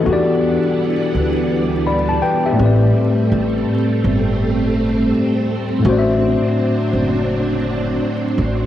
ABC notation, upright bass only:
X:1
M:4/4
L:1/16
Q:"Swing 16ths" 1/4=83
K:Ador
V:1 name="Upright bass" clef=bass
E,,3 z3 D,,6 z2 A,,,2 | z2 A,,,2 z2 G,,,6 z4 | A,,,3 z3 F,,,6 z2 A,,,2 |]